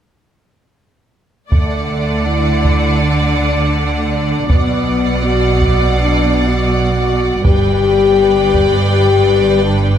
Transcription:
1.51 double bass section D2, cello section D3, french horn section A3, viola section D5, violin section D5 F#5, taiko
2.27 french horn section E4
2.65 taiko
3.02 french horn section D4
3.77 french horn section D4
4.49 double bass section B1, cello section B2, french horn section B3, violin section D5 F#5, viola section D5, taiko
5.24 french horn section F#4
5.62 taiko
5.99 french horn section D4
6.47 french horn section F#4
7.44 double bass section G1, cello section G2, french horn section G4, viola section B4, violin section D5 G5, taiko
8.54 taiko
8.90 french horn section G4
9.64 french horn section D4

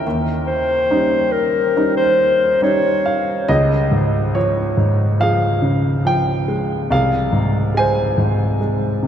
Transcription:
Already playing: grand piano A#4 G5
0.06 grand piano D#2
0.47 clarinet C5
0.91 grand piano G3 C#4 D#4
1.32 clarinet A#4
1.76 grand piano G3 C#4 D#4
1.97 clarinet C5
2.62 grand piano G3 C#4 D#4, clarinet C#5
3.06 grand piano F5
3.48 grand piano C#2 G#4 D#5
3.91 grand piano G#2
4.34 grand piano F3 C#5
4.77 grand piano G#2
5.20 grand piano F3 G#4 F5
5.62 grand piano C#3
6.05 grand piano F3 G5
6.48 grand piano G#3
6.91 grand piano C2 G#4 F5
7.32 grand piano G#2
7.74 grand piano G#3 G#5
7.79 grand piano C5
8.18 grand piano G#2
8.61 grand piano G#3
9.03 grand piano C3

